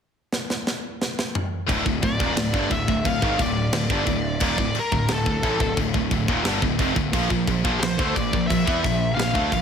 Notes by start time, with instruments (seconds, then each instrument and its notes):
0.32 snare
0.50 snare
0.67 snare
1.02 snare
1.19 snare
1.35 mid tom
1.67 picked electric bass D1, distorted electric guitar D2 A2, kick, crash
1.85 picked electric bass D1, distorted electric guitar D2 A2, kick
2.02 picked electric bass D1, distorted electric guitar D2 A2, lead electric guitar D5, kick, crash
2.19 picked electric bass D#1, distorted electric guitar D#2 A#2, kick
2.36 picked electric bass D1, distorted electric guitar D2 A2, snare, crash
2.53 picked electric bass G1, distorted electric guitar G2 D3, kick
2.70 picked electric bass D1, distorted electric guitar D2 A2, lead electric guitar E5, kick, crash
2.87 picked electric bass D1, distorted electric guitar D2 A2, kick
3.05 picked electric bass D1, distorted electric guitar D2 A2, lead electric guitar F5, kick, crash
3.22 picked electric bass G#1, distorted electric guitar G#2 D#3, kick
3.39 picked electric bass D1, distorted electric guitar D2 A2, lead electric guitar D5, kick, crash
3.72 picked electric bass D1, distorted electric guitar D2 A2, snare, crash
3.90 picked electric bass G1, distorted electric guitar G2 D3, kick
4.06 picked electric bass D1, distorted electric guitar D2 A2, kick, crash
4.40 picked electric bass D#1, distorted electric guitar D#2 A#2, kick, crash
4.44 lead electric guitar D5
4.58 picked electric bass D1, distorted electric guitar D2 A2, kick
4.74 muted picked electric bass stroke, muted distorted electric guitar stroke, crash
4.79 lead electric guitar A#4
4.92 picked electric bass D1, distorted electric guitar D2 A2, kick
5.08 picked electric bass D1, distorted electric guitar D2 A2, snare, crash
5.13 lead electric guitar A4
5.26 picked electric bass D1, distorted electric guitar D2 A2, kick
5.43 picked electric bass A1, distorted electric guitar A2 E3, kick, crash
5.60 picked electric bass D1, distorted electric guitar D2 A2, kick
5.77 picked electric bass D1, distorted electric guitar D2 A2, kick, crash
5.94 picked electric bass D1, distorted electric guitar D2 A2, kick
6.11 picked electric bass D1, distorted electric guitar D2 A2, kick, crash
6.28 picked electric bass D#1, distorted electric guitar D#2 A#2, kick
6.44 picked electric bass G1, distorted electric guitar G2 D3, snare, crash
6.62 picked electric bass D1, distorted electric guitar D2 A2, kick
6.79 picked electric bass F1, distorted electric guitar F2 C3, kick, crash
6.96 picked electric bass D1, distorted electric guitar D2 A2, kick
7.13 picked electric bass A#1, distorted electric guitar A#2 F3, kick, crash
7.30 picked electric bass A#1, distorted electric guitar A#2 F3, kick
7.47 picked electric bass A#1, distorted electric guitar A#2 F3, kick, crash
7.64 picked electric bass A#1, distorted electric guitar A#2 F3, kick
7.81 picked electric bass A#1, distorted electric guitar A#2 F3, lead electric guitar C5, snare, crash
7.99 picked electric bass D2, distorted electric guitar D3 A3, kick
8.15 picked electric bass A#1, distorted electric guitar A#2 F3, lead electric guitar D5, kick, crash
8.33 picked electric bass A#1, distorted electric guitar A#2 F3, kick
8.47 picked electric bass A#1, distorted electric guitar A#2 F3, lead electric guitar E5, kick
8.52 crash
8.65 picked electric bass E2, distorted electric guitar E3 B3, kick
8.83 picked electric bass A#1, distorted electric guitar A#2 F3, kick, crash
9.15 picked electric bass A#1, distorted electric guitar A#2 F3, lead electric guitar F5
9.19 snare, crash
9.34 picked electric bass D2, distorted electric guitar D3 A3, kick
9.50 picked electric bass A#1, distorted electric guitar A#2 F3, kick, crash